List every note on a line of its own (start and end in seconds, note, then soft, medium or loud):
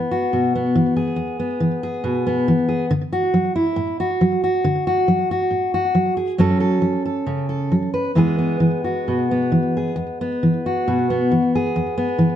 0.00 0.23 E2 medium
0.00 0.66 E3 soft
0.00 2.90 G#3 soft
0.00 0.53 B3 soft
0.11 0.96 F#4 soft
0.33 0.75 B2 medium
0.55 1.38 B3 soft
0.75 1.53 E3 medium
0.96 1.82 G#4 soft
1.16 1.95 E2 medium
1.39 2.25 B3 soft
1.60 2.38 E3 medium
1.83 2.67 G#4 soft
2.04 2.47 B2 soft
2.27 2.90 B3 soft
2.48 2.90 E3 medium
2.69 2.85 G#4 soft
2.91 3.68 D3 medium
3.13 3.55 F#4 medium
3.34 4.12 F#3 soft
3.56 3.99 E4 medium
3.76 4.55 A2 medium
4.00 4.43 F#4 medium
4.21 4.99 F#3 medium
4.44 4.86 F#4 soft
4.64 5.42 D3 medium
4.87 5.30 F#4 medium
5.08 5.86 F#3 medium
5.31 5.73 F#4 soft
5.51 6.30 A2 soft
5.74 6.16 F#4 soft
5.95 6.38 F#3 soft
6.17 6.33 G#4 soft
6.38 7.18 F#2 medium
6.38 6.80 F#3 medium
6.38 8.11 C#4 medium
6.38 6.59 A4 medium
6.60 7.04 A4 medium
6.82 7.62 F#3 soft
7.05 7.48 A4 soft
7.26 7.71 C#3 soft
7.49 7.93 A4 soft
7.72 8.15 F#3 soft
7.94 8.11 B4 soft
8.15 8.98 E2 medium
8.15 8.59 E3 soft
8.15 12.36 G#3 soft
8.15 8.37 B3 soft
8.15 8.84 G#4 medium
8.39 9.30 B3 soft
8.60 9.43 E3 soft
8.84 9.75 F#4 soft
9.08 9.53 B2 soft
9.31 10.20 B3 soft
9.52 9.97 E3 soft
9.77 9.93 G#4 soft
9.96 10.77 E2 medium
10.21 11.10 B3 soft
10.43 11.23 E3 soft
10.66 11.54 F#4 soft
10.88 11.32 B2 medium
11.10 11.96 B3 soft
11.31 12.10 E3 medium
11.55 12.36 G#4 soft
11.76 12.36 E2 medium
11.98 12.36 B3 soft
12.19 12.36 E3 medium